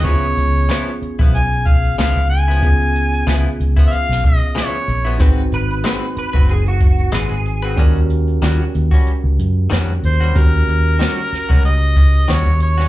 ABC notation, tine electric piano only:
X:1
M:4/4
L:1/8
Q:"Swing 16ths" 1/4=93
K:Db
V:1 name="Tine electric piano"
[_CDFA]8 | [_CDFA]8 | [CEG=B]8 | [D^F=GB]8 |
[D^F=GB]8 |]